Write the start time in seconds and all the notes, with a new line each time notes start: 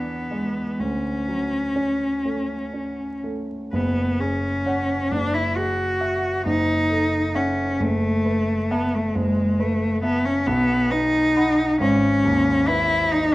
Already playing: E2 F#3 B3 D4
0.31 G#3
0.79 D2 C#4
1.28 F#3
1.76 C#4
2.25 A3
2.74 C#4
3.24 A3
3.73 F#1 B3
4.20 C#4 G#4
4.66 C#5 F#5
5.11 F#1 D4
5.34 E4
5.56 F#4 G#4
6.01 E5 F#5
6.45 F#1 D#4
6.90 A4
7.35 C#4 E5 F#5
7.80 F#1 A3
8.25 B4
8.71 B3 E5 A5
8.95 A3
9.15 F#1 G#3
9.60 A3 B4
10.03 B3 E5 A5
10.25 C#4
10.47 B1 B3
10.91 D#4 B4
11.36 F#5 B5
11.80 G#1 C#4
12.24 D#2
12.68 E4 B4
13.11 D#4 D#5